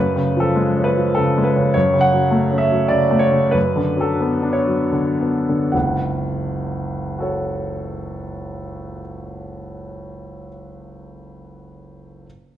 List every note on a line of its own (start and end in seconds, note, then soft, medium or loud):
0.00 1.71 F#2 soft
0.00 0.40 B4 medium
0.16 0.48 C#3 soft
0.36 0.68 F3 soft
0.36 0.85 A4 soft
0.56 0.88 G#3 soft
0.77 1.08 C#4 soft
0.84 1.15 B4 soft
0.97 1.28 F3 soft
1.15 1.48 C#3 soft
1.15 1.45 A4 medium
1.38 1.68 G#3 soft
1.44 1.74 B4 soft
1.56 1.75 C#3 soft
1.74 3.51 F#2 soft
1.74 2.03 C#5 medium
1.94 2.25 C#3 soft
2.01 2.60 F#5 medium
2.14 2.44 F#3 soft
2.31 2.63 A3 soft
2.51 2.84 C#4 soft
2.58 2.90 E5 soft
2.72 3.05 F#3 soft
2.88 3.25 C#3 soft
2.88 3.22 D5 soft
3.11 3.45 A3 soft
3.19 3.53 C#5 medium
3.32 3.54 C#3 soft
3.51 5.69 F#2 soft
3.51 4.02 B4 soft
3.76 4.11 D3 soft
3.97 4.34 F#3 soft
3.97 4.54 A4 soft
4.20 4.58 B3 soft
4.42 4.82 D4 soft
4.53 4.92 C#5 soft
4.67 5.09 F#3 soft
4.92 5.36 D3 soft
5.20 5.64 B3 soft
5.49 5.74 D3 soft
5.72 9.01 F#1 soft
5.72 9.01 C#2 soft
5.72 8.99 F#5 soft
7.18 10.46 F#4 soft
7.18 10.48 A4 soft
7.18 10.50 C#5 soft